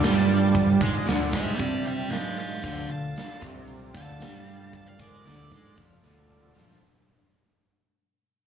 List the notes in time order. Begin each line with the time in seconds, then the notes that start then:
Already playing: D4 F4 D5 A5
0.01 G2 G3, snare, open hi-hat
0.29 open hi-hat
0.55 kick, open hi-hat
0.81 G#2 G#3, kick, open hi-hat
1.06 D2 D3, snare, open hi-hat
1.33 G#2 G#3 D5 E5 G5, kick, open hi-hat
1.58 C3 C4 D5 G5, kick, open hi-hat
1.86 D5 E5 G5, open hi-hat
2.10 G#2 G#3 F5 A5, snare, open hi-hat
2.38 F5 A5, open hi-hat
2.63 D2 D3 F4 A4 D5 F5 A5, kick, open hi-hat
2.89 D2 D3 F5 A5, open hi-hat
3.16 snare, open hi-hat
3.42 C2 C3, kick, open hi-hat
3.68 open hi-hat
3.94 D2 D3 F5 A5, kick, open hi-hat
4.19 G2 G3, snare, open hi-hat
4.47 open hi-hat
4.73 F5 A5, kick, open hi-hat
4.88 D5 F5
4.99 G#2 G#3 A#4 D5, kick, open hi-hat
5.25 D2 D3 D5, snare, open hi-hat
5.29 A4
5.52 G#2 G#3, kick, open hi-hat
5.78 F2 F3, kick, open hi-hat
6.03 D2 D3, open hi-hat
6.30 high tom
6.43 mid tom
6.55 F2 F3, snare
6.71 snare